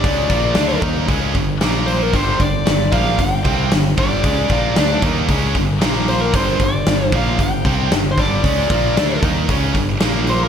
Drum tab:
HH |oooooooo|oooooooo|oooooooo|oooooooo|
SD |--o---o-|--o---o-|--o---o-|--o---o-|
BD |oo-ooo--|oo-ooo-o|oo-ooo--|oo-ooo-o|

HH |oooooooo|
SD |--o---o-|
BD |oo-ooo--|